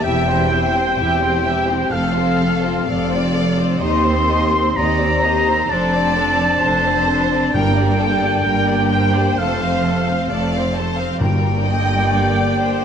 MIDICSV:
0, 0, Header, 1, 10, 480
1, 0, Start_track
1, 0, Key_signature, -2, "minor"
1, 0, Tempo, 947867
1, 16, Time_signature, 4, 2, 24, 8
1, 2416, Tempo, 918836
1, 6634, End_track
2, 0, Start_track
2, 0, Title_t, "Flute section"
2, 0, Program_c, 0, 73
2, 21, Note_on_c, 0, 79, 86
2, 954, Note_off_c, 0, 79, 0
2, 973, Note_on_c, 0, 77, 73
2, 1692, Note_off_c, 0, 77, 0
2, 1934, Note_on_c, 0, 84, 87
2, 2395, Note_off_c, 0, 84, 0
2, 2417, Note_on_c, 0, 82, 86
2, 2890, Note_off_c, 0, 82, 0
2, 2907, Note_on_c, 0, 81, 98
2, 3864, Note_off_c, 0, 81, 0
2, 3865, Note_on_c, 0, 79, 94
2, 4807, Note_off_c, 0, 79, 0
2, 4829, Note_on_c, 0, 77, 76
2, 5541, Note_off_c, 0, 77, 0
2, 5778, Note_on_c, 0, 79, 90
2, 6634, Note_off_c, 0, 79, 0
2, 6634, End_track
3, 0, Start_track
3, 0, Title_t, "Oboe"
3, 0, Program_c, 1, 68
3, 21, Note_on_c, 1, 79, 102
3, 972, Note_on_c, 1, 77, 93
3, 979, Note_off_c, 1, 79, 0
3, 1691, Note_off_c, 1, 77, 0
3, 1930, Note_on_c, 1, 84, 103
3, 2413, Note_on_c, 1, 82, 106
3, 2421, Note_off_c, 1, 84, 0
3, 2899, Note_on_c, 1, 81, 112
3, 2907, Note_off_c, 1, 82, 0
3, 3860, Note_off_c, 1, 81, 0
3, 3863, Note_on_c, 1, 79, 106
3, 4826, Note_on_c, 1, 77, 94
3, 4833, Note_off_c, 1, 79, 0
3, 5539, Note_off_c, 1, 77, 0
3, 5774, Note_on_c, 1, 79, 102
3, 6634, Note_off_c, 1, 79, 0
3, 6634, End_track
4, 0, Start_track
4, 0, Title_t, "Violin section"
4, 0, Program_c, 2, 48
4, 17, Note_on_c, 2, 76, 65
4, 130, Note_off_c, 2, 76, 0
4, 142, Note_on_c, 2, 72, 58
4, 261, Note_off_c, 2, 72, 0
4, 264, Note_on_c, 2, 76, 55
4, 381, Note_off_c, 2, 76, 0
4, 382, Note_on_c, 2, 72, 58
4, 495, Note_on_c, 2, 76, 63
4, 498, Note_off_c, 2, 72, 0
4, 605, Note_off_c, 2, 76, 0
4, 610, Note_on_c, 2, 72, 60
4, 729, Note_on_c, 2, 76, 59
4, 730, Note_off_c, 2, 72, 0
4, 848, Note_on_c, 2, 72, 53
4, 850, Note_off_c, 2, 76, 0
4, 965, Note_on_c, 2, 77, 60
4, 969, Note_off_c, 2, 72, 0
4, 1079, Note_off_c, 2, 77, 0
4, 1083, Note_on_c, 2, 72, 57
4, 1200, Note_on_c, 2, 77, 56
4, 1207, Note_off_c, 2, 72, 0
4, 1323, Note_on_c, 2, 72, 55
4, 1326, Note_off_c, 2, 77, 0
4, 1436, Note_on_c, 2, 77, 58
4, 1447, Note_off_c, 2, 72, 0
4, 1555, Note_off_c, 2, 77, 0
4, 1564, Note_on_c, 2, 72, 54
4, 1687, Note_off_c, 2, 72, 0
4, 1688, Note_on_c, 2, 77, 55
4, 1808, Note_on_c, 2, 72, 59
4, 1809, Note_off_c, 2, 77, 0
4, 1923, Note_on_c, 2, 75, 61
4, 1930, Note_off_c, 2, 72, 0
4, 2040, Note_off_c, 2, 75, 0
4, 2048, Note_on_c, 2, 72, 56
4, 2171, Note_off_c, 2, 72, 0
4, 2172, Note_on_c, 2, 75, 59
4, 2294, Note_off_c, 2, 75, 0
4, 2296, Note_on_c, 2, 72, 60
4, 2415, Note_off_c, 2, 72, 0
4, 2415, Note_on_c, 2, 75, 59
4, 2529, Note_off_c, 2, 75, 0
4, 2534, Note_on_c, 2, 72, 54
4, 2656, Note_off_c, 2, 72, 0
4, 2660, Note_on_c, 2, 75, 58
4, 2779, Note_off_c, 2, 75, 0
4, 2781, Note_on_c, 2, 72, 54
4, 2900, Note_off_c, 2, 72, 0
4, 2905, Note_on_c, 2, 72, 61
4, 3014, Note_off_c, 2, 72, 0
4, 3021, Note_on_c, 2, 74, 57
4, 3137, Note_on_c, 2, 72, 55
4, 3140, Note_off_c, 2, 74, 0
4, 3257, Note_on_c, 2, 74, 57
4, 3258, Note_off_c, 2, 72, 0
4, 3378, Note_off_c, 2, 74, 0
4, 3379, Note_on_c, 2, 72, 57
4, 3491, Note_off_c, 2, 72, 0
4, 3500, Note_on_c, 2, 74, 51
4, 3617, Note_on_c, 2, 72, 53
4, 3620, Note_off_c, 2, 74, 0
4, 3738, Note_off_c, 2, 72, 0
4, 3740, Note_on_c, 2, 74, 59
4, 3857, Note_on_c, 2, 79, 69
4, 3860, Note_off_c, 2, 74, 0
4, 3970, Note_off_c, 2, 79, 0
4, 3978, Note_on_c, 2, 74, 59
4, 4097, Note_on_c, 2, 79, 57
4, 4099, Note_off_c, 2, 74, 0
4, 4219, Note_off_c, 2, 79, 0
4, 4223, Note_on_c, 2, 74, 59
4, 4336, Note_on_c, 2, 79, 63
4, 4343, Note_off_c, 2, 74, 0
4, 4451, Note_off_c, 2, 79, 0
4, 4454, Note_on_c, 2, 74, 58
4, 4575, Note_on_c, 2, 79, 64
4, 4579, Note_off_c, 2, 74, 0
4, 4698, Note_on_c, 2, 74, 57
4, 4699, Note_off_c, 2, 79, 0
4, 4820, Note_off_c, 2, 74, 0
4, 4824, Note_on_c, 2, 81, 62
4, 4935, Note_off_c, 2, 81, 0
4, 4944, Note_on_c, 2, 77, 60
4, 5062, Note_off_c, 2, 77, 0
4, 5063, Note_on_c, 2, 81, 56
4, 5182, Note_off_c, 2, 81, 0
4, 5183, Note_on_c, 2, 77, 54
4, 5301, Note_off_c, 2, 77, 0
4, 5305, Note_on_c, 2, 81, 59
4, 5414, Note_off_c, 2, 81, 0
4, 5419, Note_on_c, 2, 77, 54
4, 5538, Note_off_c, 2, 77, 0
4, 5543, Note_on_c, 2, 81, 57
4, 5654, Note_on_c, 2, 77, 58
4, 5659, Note_off_c, 2, 81, 0
4, 5772, Note_off_c, 2, 77, 0
4, 5777, Note_on_c, 2, 74, 76
4, 6634, Note_off_c, 2, 74, 0
4, 6634, End_track
5, 0, Start_track
5, 0, Title_t, "Violin section"
5, 0, Program_c, 3, 48
5, 14, Note_on_c, 3, 76, 65
5, 257, Note_on_c, 3, 72, 73
5, 258, Note_off_c, 3, 76, 0
5, 496, Note_off_c, 3, 72, 0
5, 498, Note_on_c, 3, 67, 73
5, 968, Note_on_c, 3, 69, 70
5, 972, Note_off_c, 3, 67, 0
5, 1449, Note_on_c, 3, 74, 86
5, 1450, Note_off_c, 3, 69, 0
5, 1928, Note_on_c, 3, 72, 73
5, 1930, Note_off_c, 3, 74, 0
5, 2413, Note_off_c, 3, 72, 0
5, 2413, Note_on_c, 3, 74, 74
5, 2652, Note_off_c, 3, 74, 0
5, 2661, Note_on_c, 3, 72, 76
5, 2900, Note_off_c, 3, 72, 0
5, 2902, Note_on_c, 3, 74, 84
5, 3381, Note_off_c, 3, 74, 0
5, 3381, Note_on_c, 3, 72, 83
5, 3859, Note_on_c, 3, 70, 75
5, 3861, Note_off_c, 3, 72, 0
5, 4095, Note_off_c, 3, 70, 0
5, 4096, Note_on_c, 3, 69, 74
5, 4339, Note_off_c, 3, 69, 0
5, 4339, Note_on_c, 3, 70, 69
5, 4580, Note_on_c, 3, 72, 77
5, 4582, Note_off_c, 3, 70, 0
5, 5299, Note_off_c, 3, 72, 0
5, 5303, Note_on_c, 3, 74, 74
5, 5540, Note_off_c, 3, 74, 0
5, 5542, Note_on_c, 3, 72, 80
5, 5775, Note_on_c, 3, 70, 70
5, 5776, Note_off_c, 3, 72, 0
5, 6006, Note_off_c, 3, 70, 0
5, 6010, Note_on_c, 3, 75, 77
5, 6250, Note_off_c, 3, 75, 0
5, 6255, Note_on_c, 3, 74, 63
5, 6494, Note_on_c, 3, 72, 72
5, 6496, Note_off_c, 3, 74, 0
5, 6634, Note_off_c, 3, 72, 0
5, 6634, End_track
6, 0, Start_track
6, 0, Title_t, "Viola section"
6, 0, Program_c, 4, 48
6, 26, Note_on_c, 4, 64, 67
6, 26, Note_on_c, 4, 67, 65
6, 135, Note_off_c, 4, 64, 0
6, 135, Note_off_c, 4, 67, 0
6, 148, Note_on_c, 4, 64, 59
6, 149, Note_on_c, 4, 60, 59
6, 261, Note_off_c, 4, 64, 0
6, 264, Note_off_c, 4, 60, 0
6, 267, Note_on_c, 4, 64, 56
6, 268, Note_on_c, 4, 67, 58
6, 379, Note_off_c, 4, 64, 0
6, 383, Note_off_c, 4, 67, 0
6, 385, Note_on_c, 4, 60, 53
6, 385, Note_on_c, 4, 64, 56
6, 495, Note_off_c, 4, 64, 0
6, 500, Note_off_c, 4, 60, 0
6, 501, Note_on_c, 4, 64, 61
6, 502, Note_on_c, 4, 67, 64
6, 609, Note_off_c, 4, 64, 0
6, 609, Note_off_c, 4, 67, 0
6, 621, Note_on_c, 4, 60, 55
6, 622, Note_on_c, 4, 64, 53
6, 733, Note_off_c, 4, 64, 0
6, 736, Note_off_c, 4, 60, 0
6, 739, Note_on_c, 4, 64, 57
6, 741, Note_on_c, 4, 67, 61
6, 852, Note_off_c, 4, 64, 0
6, 856, Note_off_c, 4, 67, 0
6, 856, Note_on_c, 4, 60, 56
6, 858, Note_on_c, 4, 64, 53
6, 973, Note_off_c, 4, 60, 0
6, 974, Note_off_c, 4, 64, 0
6, 978, Note_on_c, 4, 57, 60
6, 979, Note_on_c, 4, 69, 59
6, 1086, Note_off_c, 4, 57, 0
6, 1087, Note_off_c, 4, 69, 0
6, 1095, Note_on_c, 4, 65, 55
6, 1096, Note_on_c, 4, 60, 55
6, 1213, Note_off_c, 4, 65, 0
6, 1214, Note_off_c, 4, 60, 0
6, 1218, Note_on_c, 4, 69, 57
6, 1221, Note_on_c, 4, 57, 63
6, 1335, Note_off_c, 4, 69, 0
6, 1336, Note_off_c, 4, 57, 0
6, 1339, Note_on_c, 4, 60, 58
6, 1340, Note_on_c, 4, 65, 58
6, 1455, Note_off_c, 4, 60, 0
6, 1455, Note_off_c, 4, 65, 0
6, 1456, Note_on_c, 4, 69, 64
6, 1459, Note_on_c, 4, 57, 62
6, 1565, Note_off_c, 4, 69, 0
6, 1567, Note_off_c, 4, 57, 0
6, 1577, Note_on_c, 4, 60, 54
6, 1577, Note_on_c, 4, 65, 58
6, 1693, Note_off_c, 4, 60, 0
6, 1694, Note_off_c, 4, 65, 0
6, 1696, Note_on_c, 4, 57, 48
6, 1696, Note_on_c, 4, 69, 54
6, 1813, Note_off_c, 4, 57, 0
6, 1813, Note_off_c, 4, 69, 0
6, 1813, Note_on_c, 4, 60, 53
6, 1813, Note_on_c, 4, 65, 56
6, 1930, Note_on_c, 4, 67, 65
6, 1931, Note_on_c, 4, 63, 66
6, 1932, Note_off_c, 4, 60, 0
6, 1932, Note_off_c, 4, 65, 0
6, 2043, Note_off_c, 4, 67, 0
6, 2044, Note_off_c, 4, 63, 0
6, 2047, Note_on_c, 4, 60, 65
6, 2049, Note_on_c, 4, 63, 61
6, 2168, Note_off_c, 4, 63, 0
6, 2171, Note_off_c, 4, 60, 0
6, 2174, Note_on_c, 4, 63, 57
6, 2174, Note_on_c, 4, 67, 57
6, 2288, Note_off_c, 4, 63, 0
6, 2293, Note_on_c, 4, 60, 57
6, 2294, Note_on_c, 4, 63, 53
6, 2295, Note_off_c, 4, 67, 0
6, 2412, Note_off_c, 4, 63, 0
6, 2413, Note_off_c, 4, 60, 0
6, 2418, Note_on_c, 4, 63, 62
6, 2418, Note_on_c, 4, 67, 64
6, 2529, Note_off_c, 4, 63, 0
6, 2530, Note_off_c, 4, 67, 0
6, 2535, Note_on_c, 4, 63, 55
6, 2537, Note_on_c, 4, 60, 53
6, 2652, Note_off_c, 4, 63, 0
6, 2658, Note_off_c, 4, 60, 0
6, 2658, Note_on_c, 4, 63, 61
6, 2660, Note_on_c, 4, 67, 62
6, 2773, Note_off_c, 4, 63, 0
6, 2779, Note_off_c, 4, 67, 0
6, 2779, Note_on_c, 4, 63, 53
6, 2781, Note_on_c, 4, 60, 56
6, 2899, Note_off_c, 4, 63, 0
6, 2900, Note_off_c, 4, 60, 0
6, 2901, Note_on_c, 4, 62, 59
6, 2902, Note_on_c, 4, 69, 57
6, 3011, Note_off_c, 4, 62, 0
6, 3012, Note_off_c, 4, 69, 0
6, 3017, Note_on_c, 4, 72, 53
6, 3019, Note_on_c, 4, 60, 58
6, 3138, Note_off_c, 4, 72, 0
6, 3139, Note_off_c, 4, 60, 0
6, 3142, Note_on_c, 4, 62, 62
6, 3142, Note_on_c, 4, 69, 60
6, 3261, Note_off_c, 4, 62, 0
6, 3261, Note_off_c, 4, 69, 0
6, 3265, Note_on_c, 4, 60, 55
6, 3265, Note_on_c, 4, 72, 56
6, 3382, Note_off_c, 4, 60, 0
6, 3382, Note_off_c, 4, 72, 0
6, 3384, Note_on_c, 4, 62, 67
6, 3384, Note_on_c, 4, 69, 63
6, 3493, Note_off_c, 4, 62, 0
6, 3493, Note_off_c, 4, 69, 0
6, 3501, Note_on_c, 4, 72, 61
6, 3504, Note_on_c, 4, 60, 56
6, 3620, Note_off_c, 4, 72, 0
6, 3621, Note_off_c, 4, 60, 0
6, 3622, Note_on_c, 4, 69, 52
6, 3623, Note_on_c, 4, 62, 52
6, 3741, Note_off_c, 4, 62, 0
6, 3741, Note_off_c, 4, 69, 0
6, 3744, Note_on_c, 4, 60, 57
6, 3745, Note_on_c, 4, 72, 60
6, 3862, Note_off_c, 4, 60, 0
6, 3863, Note_off_c, 4, 72, 0
6, 3864, Note_on_c, 4, 55, 64
6, 3866, Note_on_c, 4, 70, 62
6, 3974, Note_off_c, 4, 55, 0
6, 3975, Note_off_c, 4, 70, 0
6, 3989, Note_on_c, 4, 58, 65
6, 3989, Note_on_c, 4, 67, 60
6, 4105, Note_off_c, 4, 58, 0
6, 4105, Note_off_c, 4, 67, 0
6, 4111, Note_on_c, 4, 70, 59
6, 4113, Note_on_c, 4, 55, 59
6, 4226, Note_off_c, 4, 70, 0
6, 4227, Note_off_c, 4, 55, 0
6, 4231, Note_on_c, 4, 67, 52
6, 4232, Note_on_c, 4, 58, 56
6, 4346, Note_off_c, 4, 67, 0
6, 4347, Note_off_c, 4, 58, 0
6, 4348, Note_on_c, 4, 55, 63
6, 4349, Note_on_c, 4, 70, 64
6, 4457, Note_off_c, 4, 55, 0
6, 4458, Note_off_c, 4, 70, 0
6, 4468, Note_on_c, 4, 58, 57
6, 4469, Note_on_c, 4, 67, 56
6, 4586, Note_off_c, 4, 58, 0
6, 4587, Note_off_c, 4, 67, 0
6, 4590, Note_on_c, 4, 70, 65
6, 4591, Note_on_c, 4, 55, 63
6, 4707, Note_off_c, 4, 55, 0
6, 4707, Note_off_c, 4, 70, 0
6, 4714, Note_on_c, 4, 58, 54
6, 4714, Note_on_c, 4, 67, 57
6, 4826, Note_on_c, 4, 69, 64
6, 4828, Note_on_c, 4, 57, 61
6, 4829, Note_off_c, 4, 58, 0
6, 4829, Note_off_c, 4, 67, 0
6, 4936, Note_off_c, 4, 69, 0
6, 4937, Note_off_c, 4, 57, 0
6, 4947, Note_on_c, 4, 72, 57
6, 4948, Note_on_c, 4, 60, 55
6, 5064, Note_off_c, 4, 72, 0
6, 5065, Note_off_c, 4, 60, 0
6, 5070, Note_on_c, 4, 69, 63
6, 5072, Note_on_c, 4, 57, 57
6, 5185, Note_off_c, 4, 69, 0
6, 5186, Note_off_c, 4, 57, 0
6, 5186, Note_on_c, 4, 72, 55
6, 5188, Note_on_c, 4, 60, 59
6, 5303, Note_off_c, 4, 72, 0
6, 5304, Note_off_c, 4, 60, 0
6, 5309, Note_on_c, 4, 69, 64
6, 5310, Note_on_c, 4, 57, 68
6, 5416, Note_off_c, 4, 57, 0
6, 5416, Note_off_c, 4, 69, 0
6, 5430, Note_on_c, 4, 72, 56
6, 5432, Note_on_c, 4, 60, 58
6, 5543, Note_off_c, 4, 72, 0
6, 5544, Note_off_c, 4, 60, 0
6, 5550, Note_on_c, 4, 69, 50
6, 5551, Note_on_c, 4, 57, 53
6, 5662, Note_off_c, 4, 57, 0
6, 5662, Note_off_c, 4, 69, 0
6, 5664, Note_on_c, 4, 72, 54
6, 5665, Note_on_c, 4, 60, 61
6, 5778, Note_off_c, 4, 60, 0
6, 5778, Note_off_c, 4, 72, 0
6, 5781, Note_on_c, 4, 58, 77
6, 5781, Note_on_c, 4, 67, 80
6, 6634, Note_off_c, 4, 58, 0
6, 6634, Note_off_c, 4, 67, 0
6, 6634, End_track
7, 0, Start_track
7, 0, Title_t, "French horn section"
7, 0, Program_c, 5, 60
7, 0, Note_on_c, 5, 67, 67
7, 16, Note_on_c, 5, 60, 68
7, 952, Note_off_c, 5, 67, 0
7, 970, Note_on_c, 5, 69, 68
7, 1845, Note_off_c, 5, 69, 0
7, 1931, Note_on_c, 5, 67, 64
7, 2878, Note_off_c, 5, 67, 0
7, 2898, Note_off_c, 5, 60, 0
7, 2901, Note_on_c, 5, 62, 71
7, 2904, Note_on_c, 5, 60, 73
7, 3843, Note_off_c, 5, 60, 0
7, 3869, Note_on_c, 5, 58, 69
7, 4809, Note_off_c, 5, 58, 0
7, 4823, Note_on_c, 5, 57, 72
7, 4825, Note_off_c, 5, 62, 0
7, 4826, Note_on_c, 5, 60, 70
7, 5683, Note_off_c, 5, 57, 0
7, 5683, Note_off_c, 5, 60, 0
7, 5772, Note_on_c, 5, 50, 75
7, 5773, Note_on_c, 5, 58, 77
7, 6634, Note_off_c, 5, 50, 0
7, 6634, Note_off_c, 5, 58, 0
7, 6634, End_track
8, 0, Start_track
8, 0, Title_t, "Timpani"
8, 0, Program_c, 6, 47
8, 3864, Note_on_c, 6, 43, 79
8, 4564, Note_off_c, 6, 43, 0
8, 5778, Note_on_c, 6, 43, 77
8, 6475, Note_off_c, 6, 43, 0
8, 6634, End_track
9, 0, Start_track
9, 0, Title_t, "Cello section"
9, 0, Program_c, 7, 48
9, 18, Note_on_c, 7, 40, 87
9, 441, Note_off_c, 7, 40, 0
9, 495, Note_on_c, 7, 40, 73
9, 914, Note_off_c, 7, 40, 0
9, 969, Note_on_c, 7, 41, 74
9, 1394, Note_off_c, 7, 41, 0
9, 1450, Note_on_c, 7, 41, 73
9, 1873, Note_off_c, 7, 41, 0
9, 1933, Note_on_c, 7, 39, 88
9, 2359, Note_off_c, 7, 39, 0
9, 2417, Note_on_c, 7, 39, 68
9, 2843, Note_off_c, 7, 39, 0
9, 2901, Note_on_c, 7, 41, 74
9, 3324, Note_off_c, 7, 41, 0
9, 3383, Note_on_c, 7, 41, 72
9, 3805, Note_off_c, 7, 41, 0
9, 3863, Note_on_c, 7, 43, 84
9, 4287, Note_off_c, 7, 43, 0
9, 4342, Note_on_c, 7, 43, 74
9, 4767, Note_off_c, 7, 43, 0
9, 4828, Note_on_c, 7, 41, 78
9, 5246, Note_off_c, 7, 41, 0
9, 5303, Note_on_c, 7, 41, 68
9, 5720, Note_off_c, 7, 41, 0
9, 5778, Note_on_c, 7, 43, 81
9, 6634, Note_off_c, 7, 43, 0
9, 6634, End_track
10, 0, Start_track
10, 0, Title_t, "Double bass section"
10, 0, Program_c, 8, 48
10, 16, Note_on_c, 8, 28, 81
10, 440, Note_off_c, 8, 28, 0
10, 497, Note_on_c, 8, 28, 73
10, 915, Note_off_c, 8, 28, 0
10, 973, Note_on_c, 8, 29, 70
10, 1396, Note_off_c, 8, 29, 0
10, 1451, Note_on_c, 8, 29, 78
10, 1874, Note_off_c, 8, 29, 0
10, 1932, Note_on_c, 8, 39, 80
10, 2359, Note_off_c, 8, 39, 0
10, 2412, Note_on_c, 8, 39, 69
10, 2840, Note_off_c, 8, 39, 0
10, 2900, Note_on_c, 8, 29, 74
10, 3323, Note_off_c, 8, 29, 0
10, 3382, Note_on_c, 8, 29, 78
10, 3804, Note_off_c, 8, 29, 0
10, 3860, Note_on_c, 8, 31, 80
10, 4285, Note_off_c, 8, 31, 0
10, 4341, Note_on_c, 8, 31, 75
10, 4766, Note_off_c, 8, 31, 0
10, 4821, Note_on_c, 8, 29, 74
10, 5242, Note_off_c, 8, 29, 0
10, 5301, Note_on_c, 8, 29, 75
10, 5719, Note_off_c, 8, 29, 0
10, 5772, Note_on_c, 8, 31, 75
10, 6634, Note_off_c, 8, 31, 0
10, 6634, End_track
0, 0, End_of_file